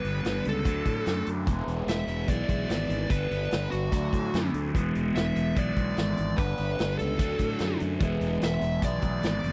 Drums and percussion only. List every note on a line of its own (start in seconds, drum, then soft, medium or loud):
0.05 closed hi-hat medium
0.25 snare medium
0.25 closed hi-hat medium
0.45 closed hi-hat medium
0.65 kick medium
0.65 closed hi-hat medium
0.85 kick medium
0.85 closed hi-hat medium
1.06 snare medium
1.06 closed hi-hat medium
1.26 closed hi-hat medium
1.47 kick loud
1.47 closed hi-hat medium
1.68 closed hi-hat medium
1.88 snare loud
1.88 closed hi-hat medium
2.08 closed hi-hat medium
2.28 kick medium
2.28 closed hi-hat medium
2.49 kick medium
2.49 closed hi-hat soft
2.70 snare loud
2.70 closed hi-hat medium
2.90 closed hi-hat medium
3.10 kick loud
3.10 closed hi-hat medium
3.31 closed hi-hat medium
3.51 snare medium
3.51 closed hi-hat medium
3.72 closed hi-hat medium
3.92 kick medium
3.92 closed hi-hat medium
4.13 kick medium
4.13 closed hi-hat medium
4.34 snare loud
4.34 closed hi-hat medium
4.54 closed hi-hat medium
4.75 kick medium
4.75 closed hi-hat medium
4.95 closed hi-hat medium
5.16 snare loud
5.16 closed hi-hat medium
5.36 closed hi-hat medium
5.56 kick medium
5.56 closed hi-hat medium
5.76 kick medium
5.76 closed hi-hat soft
5.97 snare medium
5.97 closed hi-hat medium
6.17 closed hi-hat medium
6.38 kick loud
6.38 closed hi-hat medium
6.57 closed hi-hat medium
6.79 snare medium
6.79 closed hi-hat medium
6.99 closed hi-hat medium
7.19 kick medium
7.19 closed hi-hat medium
7.39 kick medium
7.39 closed hi-hat medium
7.59 snare medium
7.59 closed hi-hat medium
7.80 closed hi-hat medium
8.00 kick loud
8.00 closed hi-hat medium
8.21 closed hi-hat medium
8.41 snare loud
8.41 closed hi-hat medium
8.61 closed hi-hat medium
8.82 kick medium
8.82 closed hi-hat medium
9.02 kick medium
9.02 closed hi-hat medium
9.23 snare loud
9.23 closed hi-hat medium
9.44 closed hi-hat medium